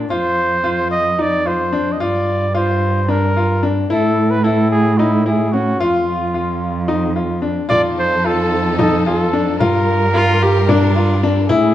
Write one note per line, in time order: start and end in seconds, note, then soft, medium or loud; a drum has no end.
0.00 0.13 A#2 medium
0.10 2.03 F2 medium
0.10 0.54 F4 medium
0.10 0.88 C5 medium
0.64 1.07 F4 medium
0.91 1.23 D#5 medium
1.19 1.40 D#4 medium
1.19 1.49 D5 medium
1.46 1.67 F4 medium
1.46 1.94 C5 medium
1.73 1.95 D4 medium
1.92 2.02 D#5 medium
2.00 3.93 G2 medium
2.00 2.44 F4 medium
2.00 2.55 D5 medium
2.54 2.98 F4 medium
2.54 3.11 C5 medium
3.08 3.30 D4 medium
3.08 3.70 A#4 medium
3.37 3.58 F4 medium
3.63 3.85 D4 medium
3.90 5.82 A2 medium
3.90 4.33 E4 medium
3.90 4.32 A4 medium
4.30 4.45 B4 medium
4.44 4.88 E4 medium
4.44 4.71 A4 medium
4.71 4.99 G#4 medium
4.98 5.21 D#4 medium
4.98 5.26 E4 medium
5.26 5.48 E4 medium
5.26 5.54 G#4 medium
5.52 5.75 C#4 medium
5.52 5.81 F#4 medium
5.80 7.67 F2 medium
5.80 7.16 F4 medium
5.80 6.24 F4 medium
6.34 6.78 F4 medium
6.88 7.10 D#4 medium
7.16 7.38 F4 medium
7.42 7.64 D4 medium
7.69 9.63 F2 medium
7.69 9.59 F3 medium
7.69 9.59 D#4 medium
7.69 8.13 F4 medium
7.69 9.59 A4 medium
7.69 7.82 D5 medium
7.69 frame drum medium
7.98 8.27 C5 medium
7.98 frame drum soft
8.24 8.68 F4 medium
8.24 8.80 A4 medium
8.79 9.00 D#4 medium
8.79 9.05 A4 medium
8.79 frame drum medium
9.06 9.28 F4 medium
9.06 9.56 A4 medium
9.33 9.55 D4 medium
9.59 11.52 G2 medium
9.59 11.48 G3 medium
9.59 11.48 F4 medium
9.59 10.03 F4 medium
9.59 11.19 A#4 medium
9.59 11.48 A#4 medium
9.59 frame drum medium
9.88 frame drum soft
10.14 10.57 F4 medium
10.14 10.44 F4 loud
10.42 10.70 G4 medium
10.69 10.90 D4 medium
10.69 11.37 D4 medium
10.69 frame drum medium
10.96 11.17 F4 medium
10.96 frame drum soft
11.23 11.45 D4 medium
11.48 11.74 A2 medium
11.48 11.74 G#3 medium
11.48 11.74 A3 medium
11.48 11.74 C#4 medium
11.48 11.74 E4 medium
11.48 11.74 G#4 medium
11.48 frame drum medium